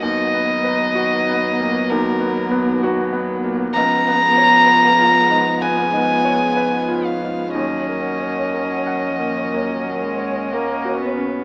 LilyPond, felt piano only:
\new Staff \with { instrumentName = "Felt piano" } { \time 4/4 \key ees \minor \tempo 4 = 63 \tuplet 3/2 { dis,8 b8 b'8 fis'8 b8 ais,8 dis,8 b8 b8 fis'8 b8 ais,8 } | \tuplet 3/2 { des,8 ces'8 des''8 ces''8 f'8 aes,8 ces'8 aes,8 des''8 ces''8 f'8 aes,8 } | \tuplet 3/2 { ees,8 bes8 des''8 bes'8 ges''8 bes,8 bes8 bes,8 des''8 bes'8 ges'8 des8 } | }